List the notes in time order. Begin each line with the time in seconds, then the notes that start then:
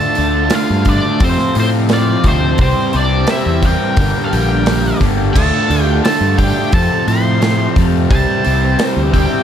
Already playing: D3 A3 D4 F4 A4 A5
0.15 D2 D3 A3 D4 F4, open hi-hat
0.50 D3 A3 D4 F4, snare, open hi-hat
0.55 F5
0.70 G2
0.85 D3 A3 D4 F4, kick, open hi-hat
0.89 D5
1.20 F2 C3 F3 A3 C4 F4, kick, open hi-hat
1.24 C5
1.39 snare
1.55 F2 A2 C3 F3 A3 C4 F4, open hi-hat
1.59 C4 C5
1.89 F2 C3 F3 A3 C4 F4, snare, open hi-hat
1.93 D5
2.24 D2 F2 C3 F3 A3 C4 F4 C5, kick, snare, open hi-hat
2.28 C4
2.58 C2 C3 E3 G3 C4 G4 C5, kick, open hi-hat
2.63 C4
2.93 C2 C3 E3 G3 C4 G4 D5, open hi-hat
2.98 D4
3.27 C3 E3 G3 C4 E4 G4 E5, snare, open hi-hat
3.46 E2
3.63 C3 E3 G3 C4 G4 G5, kick, open hi-hat
3.68 A#4
3.97 G1 G2 D3 G3 A#3 D4 G4, kick, open hi-hat
4.24 A4 F5
4.31 A#1 G2 D3 G3 A#3 D4 G4 G5, open hi-hat
4.36 A#4
4.66 G2 D3 G3 A#3 D4 G4, snare, open hi-hat
5.01 G1 G2 D3 G3 A#3 D4 G4, kick, snare, open hi-hat
5.33 D2 D3 A3 D4 A5, kick, crash
5.37 F4 A4
5.70 D2 D3 A3 D4 F4, open hi-hat
5.82 G4 G5
6.03 D3 A3 D4 F4 A4 A5, snare, open hi-hat
6.21 G2
6.38 D3 A3 D4 F4 G4 G5, kick, open hi-hat
6.72 F2 C3 F3 A3 C4 F4 A4 A5, kick, open hi-hat
7.07 F2 A2 C3 F3 A3 C4 F4 C5 C6, open hi-hat
7.41 F2 C3 F3 A3 C4 F4, snare, open hi-hat
7.76 F2 C3 F3 A3 C4 F4, kick, snare, open hi-hat
8.10 C2 C3 E3 G3 C4 E4 C5 A5, kick, open hi-hat
8.43 C2 C3 E3 G3 C4 E4, open hi-hat
8.78 C3 E3 G3 C4 E4, snare, open hi-hat
8.96 D2
9.12 C3 E3 G3 C4 E4 G4 G5, kick, open hi-hat